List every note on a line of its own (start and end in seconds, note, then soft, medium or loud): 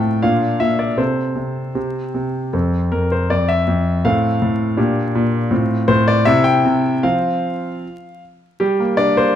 0.00 0.25 A2 medium
0.00 0.19 C4 soft
0.00 0.19 F4 soft
0.00 0.23 G5 medium
0.23 0.59 A#2 medium
0.23 0.94 D4 soft
0.23 0.94 F4 soft
0.23 0.60 F5 medium
0.60 0.97 A#2 soft
0.60 0.79 E5 medium
0.79 0.98 D5 medium
0.98 1.34 C3 soft
0.98 1.72 C4 soft
0.98 1.72 A4 soft
0.98 2.15 C5 soft
1.36 1.74 C3 soft
1.75 2.13 C3 soft
1.75 2.49 C4 soft
1.75 2.49 G4 soft
2.15 2.52 C3 soft
2.53 2.91 F2 soft
2.53 4.00 C4 soft
2.53 4.00 A4 soft
2.92 3.29 F2 soft
2.92 3.11 A#4 medium
3.12 3.30 C5 soft
3.30 3.66 F2 soft
3.30 3.49 D5 medium
3.48 4.04 E5 medium
3.67 4.03 F2 medium
4.05 4.40 A2 medium
4.05 4.74 C4 soft
4.05 4.74 A4 soft
4.05 5.51 F5 medium
4.42 4.77 A2 medium
4.77 5.13 A#2 medium
4.77 5.47 D4 soft
4.77 5.47 G4 soft
5.15 5.51 A#2 medium
5.51 5.86 A2 medium
5.51 6.22 C4 soft
5.51 6.22 F4 soft
5.88 6.25 A2 medium
5.88 6.07 C5 medium
6.08 6.27 D5 medium
6.25 6.63 C3 medium
6.25 7.00 C4 soft
6.25 7.00 E4 medium
6.25 6.45 E5 medium
6.44 7.03 G5 medium
6.65 7.03 C3 medium
7.03 7.59 F3 soft
7.03 7.67 C4 soft
7.03 7.67 F4 soft
7.03 8.21 F5 medium
8.60 9.34 G3 medium
8.60 8.98 G4 medium
8.80 9.10 A#3 soft
8.97 9.28 D4 soft
8.97 9.17 D5 medium
9.17 9.36 A#3 medium
9.17 9.36 C5 medium